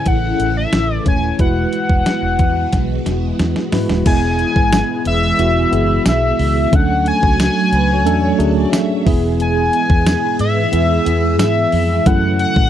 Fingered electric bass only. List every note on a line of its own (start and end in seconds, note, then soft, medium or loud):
0.06 0.31 A1 medium
0.40 0.65 A1 medium
0.73 0.98 A1 medium
1.06 1.31 D#1 medium
1.39 1.64 E1 loud
1.90 2.02 E1 medium
2.22 2.35 E1 medium
2.39 2.64 E2 medium
2.73 2.98 B1 medium
3.06 3.31 E1 medium
3.40 3.52 E2 medium
3.73 3.85 G#2 medium
3.89 4.02 D#1 medium
4.06 4.43 E1 loud
4.56 4.81 G#1 medium
5.06 5.31 E1 medium
5.39 5.64 E1 medium
5.72 5.98 F#1 medium
6.06 6.31 B1 medium
6.39 6.64 C#2 loud
6.73 7.10 D2 loud
7.23 7.48 C#2 medium
7.72 8.06 C#2 medium
8.06 8.31 E2 loud
8.39 8.64 D2 medium
9.06 9.69 E1 loud
9.90 10.15 E2 medium
10.40 10.65 G#2 medium
10.73 10.98 E2 medium
11.06 11.40 E2 medium
11.40 11.65 G#2 medium
11.73 11.98 F2 medium
12.06 12.44 F#2 loud
12.56 12.70 A2 medium